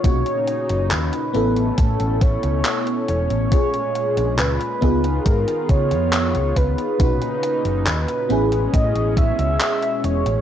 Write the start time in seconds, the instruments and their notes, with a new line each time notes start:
Already playing: soft synth lead C#5
0.03 fingered electric bass B1, fm electric piano A#2 C#4 D#4 F#4, analog synth pad A#2 C#3 D#4, kick, closed hi-hat
0.26 closed hi-hat
0.47 closed hi-hat
0.69 fingered electric bass F#1, closed hi-hat
0.91 fingered electric bass D#2, soft synth lead B4, clap, closed hi-hat
1.13 closed hi-hat
1.33 fingered electric bass A1, analog synth pad B2 A3 C#4, fm electric piano B3 C#4 E4 A4, closed hi-hat
1.56 closed hi-hat
1.78 fingered electric bass A2, soft synth lead A4, kick, closed hi-hat
2.00 fingered electric bass A1, closed hi-hat
2.21 soft synth lead C#5, kick, closed hi-hat
2.43 fingered electric bass C#2, closed hi-hat
2.65 clap, closed hi-hat
2.87 closed hi-hat
3.08 fingered electric bass E1, soft synth lead C#5, closed hi-hat
3.30 fingered electric bass A1, closed hi-hat
3.51 fm electric piano A#2 C#4 F4 G#4, analog synth pad A#2 G#3, kick, closed hi-hat
3.74 closed hi-hat
3.95 closed hi-hat
4.17 fingered electric bass A#1, closed hi-hat
4.39 fingered electric bass C#2, soft synth lead B4, clap, closed hi-hat
4.61 closed hi-hat
4.81 fingered electric bass C#2, analog synth pad D#3 B3 F4, fm electric piano B3 D#4 F4 G#4, kick, closed hi-hat
5.04 closed hi-hat
5.26 fingered electric bass G#2, soft synth lead A#4, kick, closed hi-hat
5.48 closed hi-hat
5.69 fingered electric bass C#3, soft synth lead C#5, kick, closed hi-hat
5.91 fingered electric bass F2, closed hi-hat
6.13 clap, closed hi-hat
6.35 fingered electric bass C#2, closed hi-hat
6.56 fingered electric bass C#2, soft synth lead B4, kick, closed hi-hat
6.78 closed hi-hat
6.98 fingered electric bass B1, fm electric piano A#2 C#4 D#4 F#4, analog synth pad A#2 C#3 D#4, kick, closed hi-hat
7.22 closed hi-hat
7.43 closed hi-hat
7.65 fingered electric bass F#1, closed hi-hat
7.87 fingered electric bass D#2, soft synth lead B4, clap, closed hi-hat
8.08 closed hi-hat
8.29 fingered electric bass A1, analog synth pad B2 G#3 C#4, fm electric piano B3 C#4 E4 G#4, closed hi-hat
8.52 closed hi-hat
8.74 fingered electric bass A2, soft synth lead D#5, kick, closed hi-hat
8.95 fingered electric bass A1, closed hi-hat
9.17 soft synth lead E5, kick, closed hi-hat
9.39 fingered electric bass C#2, closed hi-hat
9.61 clap, closed hi-hat
9.83 closed hi-hat
10.04 fingered electric bass E1, soft synth lead C#5, closed hi-hat
10.26 fingered electric bass A1, closed hi-hat